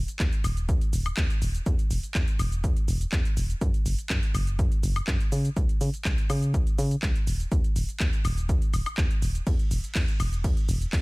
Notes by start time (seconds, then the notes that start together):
0.08 closed hi-hat, shaker
0.19 D#2, kick, clap, closed hi-hat, shaker
0.33 closed hi-hat, shaker
0.44 D#1, open hi-hat, high woodblock, shaker
0.57 closed hi-hat, shaker
0.69 D#2, kick, closed hi-hat, shaker
0.81 closed hi-hat, shaker
0.93 D#1, open hi-hat, shaker
1.06 closed hi-hat, high woodblock, shaker
1.17 D#2, kick, clap, closed hi-hat, shaker
1.30 closed hi-hat, shaker
1.42 D#1, open hi-hat, shaker
1.55 closed hi-hat, shaker
1.66 E2, kick, closed hi-hat, shaker
1.79 closed hi-hat, shaker
1.91 E1, open hi-hat, shaker
2.03 closed hi-hat, shaker
2.15 E2, kick, clap, closed hi-hat, shaker
2.28 closed hi-hat, shaker
2.39 E1, open hi-hat, high woodblock, shaker
2.52 closed hi-hat, shaker
2.64 E2, kick, closed hi-hat, shaker
2.77 closed hi-hat, shaker
2.88 E1, open hi-hat, shaker
3.01 closed hi-hat, shaker
3.12 E2, kick, clap, closed hi-hat, shaker
3.25 closed hi-hat, shaker
3.37 E1, open hi-hat, shaker
3.50 closed hi-hat, shaker
3.61 F#2, kick, closed hi-hat, shaker
3.74 closed hi-hat, shaker
3.86 F#1, open hi-hat, shaker
3.98 closed hi-hat, shaker
4.10 F#2, kick, clap, closed hi-hat, shaker
4.23 closed hi-hat, shaker
4.35 F#1, open hi-hat, high woodblock, shaker
4.47 closed hi-hat, shaker
4.59 F#2, kick, closed hi-hat, shaker
4.72 closed hi-hat, shaker
4.83 F#1, open hi-hat, shaker
4.96 closed hi-hat, high woodblock, shaker
5.07 F#2, kick, clap, closed hi-hat, shaker
5.20 closed hi-hat, shaker
5.32 C#3, open hi-hat, shaker
5.45 closed hi-hat, shaker
5.57 C#2, kick, closed hi-hat, shaker
5.69 closed hi-hat, shaker
5.81 C#3, open hi-hat, shaker
5.94 closed hi-hat, shaker
6.05 C#2, kick, clap, closed hi-hat, shaker
6.18 closed hi-hat, shaker
6.30 C#3, open hi-hat, high woodblock, shaker
6.42 closed hi-hat, shaker
6.54 C#2, kick, closed hi-hat, shaker
6.67 closed hi-hat, shaker
6.78 C#3, open hi-hat, shaker
6.91 closed hi-hat, shaker
7.02 C#2, kick, clap, closed hi-hat, shaker
7.16 closed hi-hat, shaker
7.27 D#1, open hi-hat, shaker
7.40 closed hi-hat, shaker
7.52 D#2, kick, closed hi-hat, shaker
7.64 closed hi-hat, shaker
7.76 D#1, open hi-hat, shaker
7.89 closed hi-hat, shaker
8.00 D#2, kick, clap, closed hi-hat, shaker
8.13 closed hi-hat, shaker
8.25 D#1, open hi-hat, high woodblock, shaker
8.38 closed hi-hat, shaker
8.49 D#2, kick, closed hi-hat, shaker
8.62 closed hi-hat, shaker
8.74 D#1, open hi-hat, high woodblock, shaker
8.86 closed hi-hat, high woodblock, shaker
8.98 D#2, kick, clap, closed hi-hat, shaker
9.11 closed hi-hat, shaker
9.22 D#1, open hi-hat, shaker
9.35 closed hi-hat, shaker
9.47 E2, kick, closed hi-hat, ride, shaker
9.59 closed hi-hat, shaker
9.71 E1, open hi-hat, shaker
9.84 closed hi-hat, shaker
9.95 E2, kick, clap, closed hi-hat, ride, shaker
10.08 closed hi-hat, shaker
10.20 E1, open hi-hat, high woodblock, shaker
10.33 closed hi-hat, shaker
10.44 E2, kick, closed hi-hat, ride, shaker
10.57 closed hi-hat, shaker
10.69 E1, open hi-hat, shaker
10.81 closed hi-hat, shaker
10.93 E2, kick, clap, closed hi-hat, ride, shaker